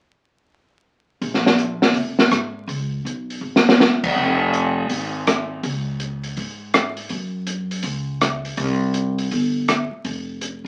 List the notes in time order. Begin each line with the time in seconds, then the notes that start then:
1.21 A#1, open hi-hat
1.34 snare
1.46 snare
1.58 closed hi-hat
1.82 snare
1.94 F1, open hi-hat
2.19 snare
2.31 G#2, cross-stick, closed hi-hat
2.67 C#2, open hi-hat
3.05 B1, closed hi-hat
3.30 open hi-hat
3.41 G#1
3.56 snare
3.69 snare
3.80 snare
4.03 kick, crash
4.16 F1
4.53 closed hi-hat
4.90 G#1, open hi-hat
5.27 cross-stick, closed hi-hat
5.63 C#2, open hi-hat
6.00 closed hi-hat
6.24 open hi-hat
6.37 G#2, open hi-hat
6.74 cross-stick, closed hi-hat
6.97 open hi-hat
7.09 F#2, open hi-hat
7.47 closed hi-hat
7.71 open hi-hat
7.83 C#2, open hi-hat
8.21 cross-stick, closed hi-hat
8.45 open hi-hat
8.57 C2, open hi-hat
8.94 closed hi-hat
9.18 open hi-hat
9.31 G1, open hi-hat
9.68 cross-stick, closed hi-hat
9.91 muted upright bass stroke
10.04 F1, open hi-hat
10.41 closed hi-hat
10.64 D#2